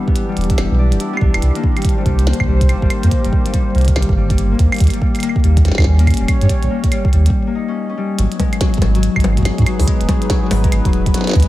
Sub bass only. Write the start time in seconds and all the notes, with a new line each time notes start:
0.37 E1
0.58 E1
0.71 B1
0.92 D1
1.21 B1
1.34 E1
1.42 C2
2.06 C2
2.40 C2
2.48 C2
2.82 G1
3.03 F2
3.25 G1
3.75 C2
3.96 C2
4.09 G1
4.59 D#2
4.80 D#2
5.44 D#2
5.78 D#2
5.86 D#2
6.20 D#1
6.42 G2
6.63 A#1
7.13 D#2
8.18 G#1
8.82 G#1
9.16 G#1
9.24 G#1
9.58 G#2
9.80 C#2
10.01 D#1
10.51 G#1
10.72 G#1
10.85 D#1
11.06 F#1
11.35 D#2